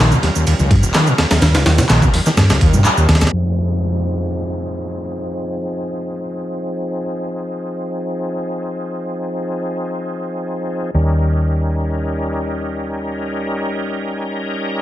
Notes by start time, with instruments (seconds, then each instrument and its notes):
Already playing: tonewheel organ G3 C#4 F4 A#4
0.00 acid bass D#3
0.12 acid bass A#2, low conga, shaker
0.23 acid bass D#2, snare, ride, high conga
0.36 acid bass D#2, shaker
0.47 acid bass D#2, ride, shaker
0.59 acid bass C#2, high conga, low conga, shaker
0.71 fingered electric bass G2, acid bass C#3, kick, ride
0.83 acid bass D#1, shaker
0.94 acid bass D#3, snare, clap, ride, high conga, shaker
1.07 acid bass A#2, shaker
1.18 acid bass D#2, snare, ride
1.31 acid bass D#2, snare, ride, high conga, shaker
1.42 fingered electric bass D#2, acid bass D#2, snare, ride, shaker
1.55 acid bass C#2, snare, ride, shaker
1.66 acid bass D#2, snare, ride, high conga
1.78 acid bass C#3, muted fingered electric bass stroke, snare, ride, low conga, shaker
1.90 fingered electric bass A#1, acid bass D#3, snare, clap, ride, shaker
2.02 acid bass A#2, kick, low conga, shaker
2.13 acid bass D#2, open hi-hat, high conga
2.26 acid bass D#3, snare, shaker
2.37 acid bass D#2, fingered electric bass G2, snare, ride, shaker
2.50 acid bass C#2, snare, ride, high conga, shaker
2.61 acid bass D#2, kick, ride
2.73 fingered electric bass G2, acid bass C#3, shaker
2.85 acid bass G2, clap, high conga, shaker
2.97 acid bass D#2, shaker
3.08 acid bass D#2, fingered electric bass D#2, snare, ride
3.15 snare, ride
3.21 acid bass C#2, snare, ride, high conga, low conga, shaker
3.27 snare, ride
3.32 fingered electric bass F2, tonewheel organ F3 C4 D#4 G#4, downlifter
10.94 fingered electric bass D#2, tonewheel organ G3 C#4 D#4 A#4